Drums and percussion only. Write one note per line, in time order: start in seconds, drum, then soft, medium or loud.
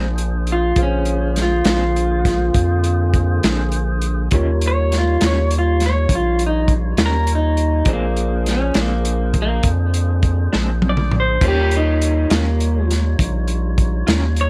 0.18 closed hi-hat medium
0.47 closed hi-hat soft
0.76 kick medium
0.76 closed hi-hat medium
1.05 closed hi-hat medium
1.36 snare soft
1.36 closed hi-hat medium
1.65 snare medium
1.65 closed hi-hat medium
1.96 closed hi-hat soft
2.25 kick medium
2.25 snare soft
2.25 closed hi-hat medium
2.54 kick loud
2.54 closed hi-hat medium
2.84 closed hi-hat medium
3.14 kick medium
3.14 closed hi-hat medium
3.43 snare loud
3.43 closed hi-hat medium
3.72 closed hi-hat medium
4.01 closed hi-hat medium
4.31 kick loud
4.31 closed hi-hat medium
4.61 closed hi-hat medium
4.92 snare soft
4.92 closed hi-hat medium
5.21 snare medium
5.21 closed hi-hat medium
5.51 closed hi-hat medium
5.80 snare soft
5.80 closed hi-hat medium
6.09 kick loud
6.09 closed hi-hat medium
6.39 closed hi-hat medium
6.68 kick medium
6.68 closed hi-hat medium
6.97 snare loud
6.97 closed hi-hat medium
7.27 closed hi-hat medium
7.57 closed hi-hat soft
7.85 kick medium
7.85 closed hi-hat medium
8.16 closed hi-hat medium
8.46 snare soft
8.46 closed hi-hat medium
8.74 snare medium
8.74 closed hi-hat medium
9.05 closed hi-hat medium
9.34 kick medium
9.34 closed hi-hat medium
9.63 kick loud
9.63 closed hi-hat medium
9.94 closed hi-hat medium
10.23 kick medium
10.23 closed hi-hat medium
10.53 snare medium
10.82 high tom medium
10.97 mid tom medium
11.12 mid tom medium
11.41 kick medium
11.41 closed hi-hat medium
11.41 crash medium
11.71 closed hi-hat medium
12.02 closed hi-hat medium
12.30 snare medium
12.30 closed hi-hat medium
12.60 closed hi-hat medium
12.90 snare soft
12.90 closed hi-hat medium
13.19 kick loud
13.19 closed hi-hat medium
13.48 closed hi-hat medium
13.78 kick medium
13.78 closed hi-hat medium
14.07 snare loud
14.07 closed hi-hat medium
14.36 closed hi-hat medium